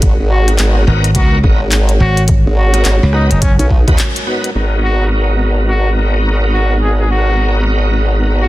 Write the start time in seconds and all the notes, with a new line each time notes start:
Already playing: G#3 F#4 A#4
0.02 G#1 C#5, kick, closed hi-hat
0.20 G#1
0.30 F#4
0.48 B3 D#4 F#4 A#4, cross-stick, closed hi-hat
0.59 G#1, clap, closed hi-hat
0.87 G#1 B3 D#4 F#4 A#4
1.04 closed hi-hat
1.15 C#2 B3 D#4 F#4 A#4, kick, closed hi-hat
1.44 G#1 B3 D#4 F#4 A#4, kick
1.72 clap, closed hi-hat
1.89 closed hi-hat
2.00 G#1 F#4
2.17 closed hi-hat
2.28 kick, closed hi-hat
2.46 G#1
2.57 F#4
2.74 B3 D#4 F#4 A#4, cross-stick, closed hi-hat
2.85 G#1, clap, closed hi-hat
3.03 C#2
3.13 B3 D#4 F#4 B4, cross-stick
3.31 F#1 D#4, closed hi-hat
3.41 C#4, kick, closed hi-hat
3.59 B1 C#4, closed hi-hat
3.70 kick
3.87 D#2 B3 D#4 F#4 B4, kick, closed hi-hat
3.98 clap, closed hi-hat
4.16 closed hi-hat
4.27 B3 D#4 F#4 B4
4.44 closed hi-hat
4.55 G#1 B3 D#4 F#4 A#4 A#5
4.83 F#4
5.69 F#4
6.53 F#4
6.82 G#4
7.00 G#4
7.11 F#4
8.41 F#4